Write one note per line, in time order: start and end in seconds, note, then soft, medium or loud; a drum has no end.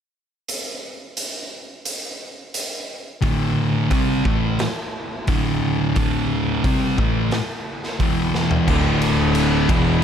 0.48 closed hi-hat medium
1.17 closed hi-hat medium
1.85 closed hi-hat medium
2.54 closed hi-hat medium
3.21 3.89 D2 medium
3.21 3.90 A2 loud
3.21 3.90 D3 medium
3.21 kick loud
3.21 open hi-hat medium
3.90 4.24 C3 medium
3.90 4.24 G3 loud
3.90 4.24 C4 loud
3.90 kick loud
3.90 open hi-hat medium
4.25 4.58 A2 medium
4.25 4.59 E3 medium
4.25 4.59 A3 medium
4.25 kick loud
4.59 snare loud
4.59 open hi-hat soft
5.27 5.95 D2 medium
5.27 5.95 A2 loud
5.27 5.95 D3 medium
5.27 kick loud
5.27 open hi-hat medium
5.96 6.63 D2 medium
5.96 6.63 A2 medium
5.96 6.64 D3 loud
5.96 kick medium
5.96 open hi-hat medium
6.64 6.97 C3 medium
6.64 6.98 G3 medium
6.64 6.98 C4 loud
6.64 kick loud
6.64 open hi-hat medium
6.98 7.31 A2 medium
6.98 7.32 E3 medium
6.98 7.32 A3 medium
6.98 kick loud
7.31 snare medium
7.31 open hi-hat medium
7.84 snare soft
8.00 8.67 E2 medium
8.00 8.68 B2 loud
8.00 8.68 E3 loud
8.00 kick loud
8.00 open hi-hat medium
8.35 snare medium
8.51 floor tom medium
8.68 9.65 D1 loud
8.68 9.69 D2 medium
8.68 9.69 A2 medium
8.68 9.69 D3 loud
8.68 kick loud
8.68 crash loud
9.02 ride medium
9.35 ride loud
9.69 10.01 E1 medium
9.69 10.02 E2 medium
9.69 10.03 B2 medium
9.69 10.03 E3 medium
9.69 kick loud
9.69 ride medium